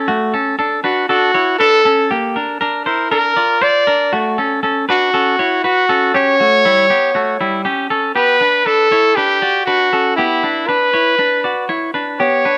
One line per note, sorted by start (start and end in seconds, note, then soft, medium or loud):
0.08 0.34 A3 medium
0.08 0.33 F#4 loud
0.34 0.59 C#4 medium
0.34 0.57 A4 medium
0.59 0.83 D4 medium
0.59 0.83 A4 medium
0.84 1.09 D4 medium
0.84 1.07 F#4 medium
0.84 1.09 B4 medium
1.09 1.35 D4 medium
1.09 1.56 F#4 medium
1.09 1.34 A4 medium
1.34 1.60 E4 medium
1.34 1.59 C#5 medium
1.58 1.85 D4 medium
1.58 2.06 A4 loud
1.58 1.85 B4 medium
1.85 2.11 C#4 medium
1.85 2.10 A4 medium
2.11 2.36 A#3 medium
2.11 2.36 G4 medium
2.36 2.61 D4 medium
2.36 2.60 A#4 medium
2.61 2.86 D4 medium
2.61 2.86 A#4 medium
2.85 3.12 E4 medium
2.85 3.09 A#4 medium
2.85 3.11 C5 medium
3.11 3.37 D4 medium
3.11 3.64 A#4 medium
3.11 3.36 A#4 medium
3.37 3.61 F4 medium
3.37 3.61 D5 medium
3.61 3.87 F4 medium
3.61 3.87 C5 medium
3.61 4.12 D5 loud
3.87 4.13 D4 medium
3.87 4.12 A#4 medium
4.13 4.38 A3 medium
4.13 4.38 F#4 loud
4.38 4.63 C#4 medium
4.38 4.62 A4 medium
4.63 4.88 C#4 medium
4.63 4.88 A4 medium
4.89 5.14 D4 medium
4.89 5.60 F#4 medium
4.89 5.13 B4 medium
5.14 5.39 C#4 medium
5.14 5.39 A4 medium
5.39 5.64 E4 medium
5.39 5.64 C#5 medium
5.64 6.10 F#4 medium
5.64 5.90 F#4 medium
5.64 5.89 B4 medium
5.89 6.14 C#4 medium
5.89 6.14 A4 medium
6.14 6.40 C#4 medium
6.14 6.39 G4 medium
6.14 7.62 C#5 loud
6.40 6.65 A3 medium
6.40 6.65 F#4 medium
6.65 6.90 G3 medium
6.65 6.90 E4 medium
6.90 7.15 B3 medium
6.90 7.15 G4 medium
7.15 7.40 A3 medium
7.15 7.40 F#4 medium
7.41 7.66 G3 medium
7.41 7.65 E4 medium
7.65 7.90 C#4 medium
7.65 7.90 G4 medium
7.90 8.16 C#4 medium
7.90 8.15 A4 medium
8.16 8.41 B3 medium
8.16 8.40 G4 medium
8.16 8.67 B4 medium
8.41 8.66 D4 medium
8.41 8.65 B4 medium
8.66 8.92 D4 soft
8.66 9.17 A4 loud
8.66 8.91 B4 medium
8.92 9.17 E4 medium
8.92 9.17 C#5 medium
9.15 9.43 D4 medium
9.15 9.65 G4 medium
9.15 9.42 B4 medium
9.42 9.68 F#4 medium
9.42 9.67 D5 medium
9.65 9.93 D4 medium
9.65 10.13 F#4 medium
9.65 9.93 B4 medium
9.93 10.18 C#4 medium
9.93 10.18 A4 medium
10.16 10.44 B3 medium
10.16 10.69 E4 medium
10.16 10.43 G4 medium
10.43 10.68 D4 medium
10.43 10.67 B4 medium
10.67 10.94 D4 medium
10.67 11.69 B4 medium
10.67 10.93 B4 medium
10.94 11.19 E4 medium
10.94 11.18 C#5 medium
11.19 11.44 D4 medium
11.19 11.44 B4 medium
11.44 11.70 F#4 medium
11.44 11.69 D5 medium
11.69 11.94 E4 medium
11.69 11.94 C#5 medium
11.94 12.20 D4 medium
11.94 12.19 B4 medium
12.20 12.45 B3 medium
12.20 12.45 G4 medium
12.20 12.58 C#5 medium
12.45 12.58 D4 medium
12.45 12.58 B4 medium